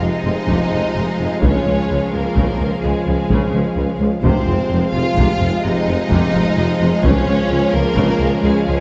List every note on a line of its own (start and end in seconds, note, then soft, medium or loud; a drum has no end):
0.00 0.08 F1 soft
0.00 0.10 F1 soft
0.00 0.09 F2 soft
0.00 1.38 C3 soft
0.00 0.08 C3 soft
0.00 4.19 F3 soft
0.00 4.19 G#3 soft
0.00 1.37 C4 soft
0.00 1.42 D#4 medium
0.00 4.18 F4 soft
0.00 4.19 F4 soft
0.00 4.17 G#4 soft
0.00 1.42 D#5 medium
0.00 4.18 F5 soft
0.25 0.34 F1 soft
0.25 0.33 F1 soft
0.25 0.33 F2 soft
0.25 0.33 F3 soft
0.48 0.57 F1 soft
0.48 0.56 F1 soft
0.48 0.56 F2 medium
0.48 0.70 C3 soft
0.48 taiko medium
0.71 0.81 F1 soft
0.71 0.80 F1 soft
0.71 0.80 F2 soft
0.71 0.79 F3 soft
0.95 1.03 F1 soft
0.95 1.05 F1 soft
0.95 1.03 F2 soft
0.95 1.04 C3 soft
1.19 1.28 F1 soft
1.19 1.27 F1 soft
1.19 1.28 F2 soft
1.19 1.27 F3 soft
1.41 1.51 C#2 medium
1.41 1.51 C#2 soft
1.41 1.63 C#3 medium
1.41 4.19 C#3 soft
1.41 4.23 C#4 medium
1.41 2.11 C#4 medium
1.41 2.11 C#5 medium
1.41 taiko medium
1.65 1.73 C#2 soft
1.65 1.75 C#2 soft
1.65 1.74 C#2 soft
1.65 1.74 F3 soft
1.89 1.98 C#2 soft
1.89 1.97 C#2 soft
1.89 1.99 C#2 soft
1.89 1.98 C#3 soft
2.12 2.20 C#2 soft
2.12 2.22 C#2 soft
2.12 2.21 C#2 soft
2.12 2.21 F3 soft
2.12 2.82 A#3 medium
2.12 2.81 A#4 medium
2.35 2.43 C#2 medium
2.35 2.46 C#2 soft
2.35 2.45 C#2 soft
2.35 2.57 C#3 soft
2.35 taiko medium
2.59 2.67 C#2 soft
2.59 2.69 C#2 soft
2.59 2.67 F3 soft
2.82 2.91 C#2 soft
2.82 2.93 C#2 soft
2.82 2.91 C#3 soft
2.82 4.00 G#3 soft
2.82 3.99 G#4 medium
3.06 3.14 C#2 soft
3.06 3.17 C#2 soft
3.06 3.16 C#2 soft
3.06 3.15 F3 soft
3.29 3.37 C#2 medium
3.29 3.39 C#2 medium
3.29 3.38 C#2 medium
3.29 3.52 C#3 medium
3.29 taiko medium
3.53 3.61 C#2 soft
3.53 3.63 C#2 soft
3.53 3.62 F3 soft
3.76 3.84 C#2 soft
3.76 3.86 C#2 soft
3.76 3.84 C#3 soft
3.99 4.07 C#2 soft
3.99 4.09 C#2 soft
3.99 4.09 F3 soft
4.21 4.31 F1 medium
4.21 4.32 F1 medium
4.21 4.32 F2 medium
4.21 6.86 C3 medium
4.21 4.45 C3 medium
4.21 8.80 F3 medium
4.21 8.80 G#3 soft
4.21 7.04 C4 medium
4.21 4.91 C4 medium
4.21 8.80 F4 medium
4.21 8.80 F4 soft
4.21 8.80 G#4 medium
4.21 4.90 C5 medium
4.21 8.80 F5 medium
4.21 taiko medium
4.46 4.54 F1 soft
4.46 4.56 F1 soft
4.46 4.56 F2 soft
4.46 4.55 F3 soft
4.69 4.77 F1 soft
4.69 4.80 F1 soft
4.69 4.79 F2 soft
4.69 4.79 C3 soft
4.94 5.02 F1 soft
4.94 5.04 F1 soft
4.94 5.03 F2 soft
4.94 5.02 F3 soft
4.94 5.64 F4 medium
4.94 5.65 F5 medium
5.16 5.24 F1 medium
5.16 5.28 F1 medium
5.16 5.25 F2 medium
5.16 5.39 C3 medium
5.16 taiko medium
5.41 5.49 F1 soft
5.41 5.51 F1 soft
5.41 5.49 F2 soft
5.41 5.49 F3 soft
5.62 5.72 F1 soft
5.62 5.74 F1 soft
5.62 5.72 F2 soft
5.62 5.71 C3 soft
5.62 7.05 D#4 medium
5.62 7.00 D#5 medium
5.87 5.95 F1 soft
5.87 5.97 F1 soft
5.87 5.96 F2 soft
5.87 5.95 F3 soft
6.10 6.18 F1 medium
6.10 6.21 F1 medium
6.10 6.20 F2 medium
6.10 6.33 C3 medium
6.10 taiko medium
6.35 6.43 F1 soft
6.35 6.44 F1 soft
6.35 6.43 F2 soft
6.35 6.43 F3 soft
6.57 6.65 F1 soft
6.57 6.67 F1 soft
6.57 6.67 F2 soft
6.57 6.66 C3 soft
6.80 6.88 F1 soft
6.80 6.91 F1 soft
6.80 6.90 F2 soft
6.80 6.90 F3 medium
7.01 7.11 C#2 medium
7.01 7.13 C#2 medium
7.01 7.25 C#3 medium
7.01 8.80 C#3 medium
7.01 8.80 C#4 medium
7.01 7.73 C#4 medium
7.01 7.74 C#5 medium
7.01 taiko medium
7.27 7.35 C#2 soft
7.27 7.37 C#2 soft
7.27 7.36 C#2 soft
7.27 7.35 F3 soft
7.50 7.58 C#2 soft
7.50 7.60 C#2 soft
7.50 7.59 C#2 soft
7.50 7.58 C#3 soft
7.72 7.83 C#2 soft
7.72 7.82 C#2 soft
7.72 7.83 C#2 soft
7.72 7.81 F3 soft
7.72 8.44 A#3 medium
7.72 8.43 A#4 medium
7.96 8.04 C#2 medium
7.96 8.07 C#2 medium
7.96 8.06 C#2 medium
7.96 8.18 C#3 medium
7.96 taiko medium
8.20 8.28 C#2 soft
8.20 8.30 C#2 soft
8.20 8.28 F3 soft
8.43 8.51 C#2 medium
8.43 8.53 C#2 medium
8.43 8.52 C#2 soft
8.43 8.53 C#3 soft
8.43 8.80 G#3 medium
8.43 8.80 G#4 medium
8.67 8.75 C#2 soft
8.67 8.77 C#2 soft
8.67 8.76 C#2 soft
8.67 8.75 F3 soft